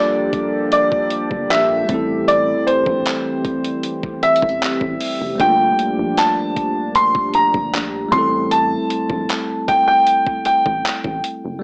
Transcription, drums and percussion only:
0.33 kick, closed hi-hat
0.72 closed hi-hat
0.92 kick
1.10 closed hi-hat
1.31 kick
1.51 clap, closed hi-hat
1.89 kick, closed hi-hat
2.28 closed hi-hat
2.67 closed hi-hat
2.86 kick
3.06 clap, closed hi-hat
3.45 kick, closed hi-hat
3.65 closed hi-hat
3.83 closed hi-hat
4.03 kick
4.23 closed hi-hat
4.36 closed hi-hat
4.42 kick
4.49 closed hi-hat
4.62 clap, closed hi-hat
4.81 kick
5.01 open hi-hat
5.40 kick, closed hi-hat
5.79 closed hi-hat
6.17 clap, closed hi-hat
6.56 kick, closed hi-hat
6.95 closed hi-hat
7.15 kick
7.34 closed hi-hat
7.54 kick
7.74 clap, closed hi-hat
8.12 kick, closed hi-hat
8.51 closed hi-hat
8.90 closed hi-hat
9.10 kick
9.29 clap, closed hi-hat
9.68 kick, closed hi-hat
10.07 closed hi-hat
10.27 kick
10.45 closed hi-hat
10.66 kick
10.85 clap, closed hi-hat
11.04 kick
11.24 closed hi-hat

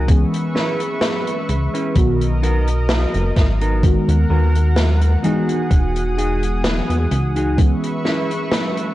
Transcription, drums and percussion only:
0.08 kick, closed hi-hat
0.34 closed hi-hat
0.56 snare
0.80 closed hi-hat
1.01 snare, closed hi-hat
1.27 closed hi-hat
1.49 closed hi-hat
1.75 closed hi-hat
1.96 kick, closed hi-hat
2.21 closed hi-hat
2.43 closed hi-hat
2.68 closed hi-hat
2.89 snare, closed hi-hat
3.14 closed hi-hat
3.36 kick, snare, closed hi-hat
3.61 closed hi-hat
3.83 kick, closed hi-hat
4.09 closed hi-hat
4.55 closed hi-hat
4.76 snare, closed hi-hat
5.01 closed hi-hat
5.24 closed hi-hat
5.49 closed hi-hat
5.71 kick, closed hi-hat
5.96 closed hi-hat
6.18 closed hi-hat
6.43 closed hi-hat
6.64 snare, closed hi-hat
6.90 closed hi-hat
7.11 closed hi-hat
7.36 closed hi-hat
7.58 kick, closed hi-hat
7.84 closed hi-hat
8.05 snare
8.31 closed hi-hat
8.52 snare, closed hi-hat
8.77 closed hi-hat

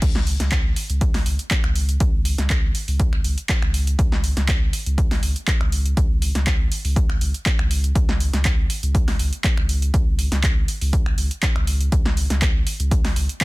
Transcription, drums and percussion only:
0.02 kick, closed hi-hat, crash
0.15 snare
0.27 open hi-hat
0.40 snare, closed hi-hat
0.52 kick, clap, closed hi-hat
0.76 open hi-hat
0.90 closed hi-hat
1.01 kick, closed hi-hat
1.14 finger snap, snare, open hi-hat
1.26 open hi-hat
1.39 closed hi-hat
1.51 kick, clap, closed hi-hat
1.64 finger snap
1.76 open hi-hat
1.89 closed hi-hat
2.00 kick, closed hi-hat
2.25 open hi-hat
2.38 snare, closed hi-hat
2.50 kick, clap, closed hi-hat
2.75 open hi-hat
2.88 open hi-hat
3.00 kick, closed hi-hat
3.13 finger snap
3.24 open hi-hat
3.38 closed hi-hat
3.49 kick, clap, closed hi-hat
3.62 finger snap
3.74 open hi-hat
3.87 closed hi-hat
3.99 kick, closed hi-hat
4.12 snare
4.24 open hi-hat
4.37 snare, closed hi-hat
4.48 kick, clap, closed hi-hat
4.73 open hi-hat
4.86 closed hi-hat
4.98 kick, closed hi-hat
5.11 finger snap, snare, open hi-hat
5.23 open hi-hat
5.36 closed hi-hat
5.48 kick, clap, closed hi-hat
5.61 finger snap
5.72 open hi-hat
5.86 closed hi-hat
5.97 kick, closed hi-hat
6.22 open hi-hat
6.35 snare, closed hi-hat
6.47 kick, clap, closed hi-hat
6.72 open hi-hat
6.85 open hi-hat
6.96 kick, closed hi-hat
7.10 finger snap
7.21 open hi-hat
7.34 closed hi-hat
7.46 kick, clap, closed hi-hat
7.59 finger snap
7.71 open hi-hat
7.84 closed hi-hat
7.95 kick, closed hi-hat
8.09 snare
8.20 open hi-hat
8.33 snare, closed hi-hat
8.45 kick, clap, closed hi-hat
8.70 open hi-hat
8.83 closed hi-hat
8.95 kick, closed hi-hat
9.08 finger snap, snare, open hi-hat
9.19 open hi-hat
9.33 closed hi-hat
9.44 kick, clap, closed hi-hat
9.57 finger snap
9.69 open hi-hat
9.82 closed hi-hat
9.94 kick, closed hi-hat
10.19 open hi-hat
10.32 snare, closed hi-hat
10.43 kick, clap, closed hi-hat
10.68 open hi-hat
10.81 open hi-hat
10.93 kick, closed hi-hat
11.06 finger snap
11.18 open hi-hat
11.31 closed hi-hat
11.43 kick, clap, closed hi-hat
11.56 finger snap
11.67 open hi-hat
11.81 closed hi-hat
11.92 kick, closed hi-hat
12.05 snare
12.17 open hi-hat
12.30 snare, closed hi-hat
12.42 kick, clap, closed hi-hat
12.67 open hi-hat
12.80 closed hi-hat
12.91 kick, closed hi-hat
13.05 finger snap, snare, open hi-hat
13.16 open hi-hat
13.29 closed hi-hat
13.41 kick, clap, closed hi-hat

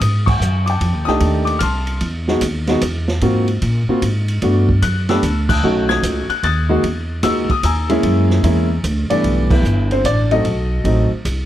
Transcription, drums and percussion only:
0.01 kick, hi-hat pedal, ride
0.27 kick, crash
0.41 hi-hat pedal
0.67 ride
0.81 kick, ride
1.07 snare
1.20 kick, ride
1.47 ride
1.60 kick, hi-hat pedal, ride
1.87 ride
2.01 kick, ride
2.28 snare
2.41 kick, hi-hat pedal, ride
2.67 snare, ride
2.81 kick, hi-hat pedal, ride
3.08 snare
3.21 kick, ride
3.48 ride
3.62 kick, ride
4.02 kick, hi-hat pedal, ride
4.28 ride
4.42 kick, ride
4.69 kick
4.82 kick, hi-hat pedal, ride
5.09 snare, ride
5.23 kick, hi-hat pedal, ride
5.49 kick, crash
5.89 snare
6.03 kick, hi-hat pedal, ride
6.30 ride
6.43 kick, ride
6.83 kick, ride
7.23 kick, snare, hi-hat pedal, ride
7.50 kick, ride
7.63 kick, hi-hat pedal, ride
7.90 ride
8.03 kick, ride
8.30 snare
8.44 kick, ride
8.84 kick, hi-hat pedal, ride
9.10 ride
9.24 kick, ride
9.50 kick, crash
9.65 hi-hat pedal
9.91 ride
10.04 kick, hi-hat pedal, ride
10.31 ride
10.45 kick, ride
10.85 kick, ride
11.25 kick, hi-hat pedal, ride

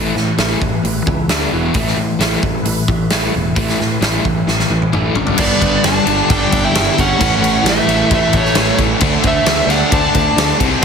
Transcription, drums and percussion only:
0.17 snare
0.38 snare, open hi-hat
0.62 kick
0.85 open hi-hat
1.07 kick
1.29 snare, open hi-hat
1.74 kick, open hi-hat
1.87 snare
2.20 snare, open hi-hat
2.43 kick
2.65 open hi-hat
2.88 kick
3.10 snare, open hi-hat
3.56 kick, open hi-hat
3.69 snare
3.81 snare
4.02 snare, open hi-hat
4.25 kick
4.48 snare
4.59 snare
4.82 high tom
4.93 mid tom
5.15 floor tom
5.27 floor tom
5.38 kick, crash
5.62 kick, crash
5.84 snare, crash
6.07 crash
6.30 kick, crash
6.52 kick, crash
6.75 snare, crash
6.98 kick, crash
7.21 kick, crash
7.44 crash
7.66 snare, crash
7.89 crash
8.11 kick, crash
8.33 kick, crash
8.45 snare
8.55 snare, crash
8.78 kick, crash
9.00 kick, crash
9.23 kick, crash
9.46 snare, crash
9.70 snare, crash
9.92 kick, crash
10.15 kick, crash
10.38 snare, crash
10.60 kick, crash

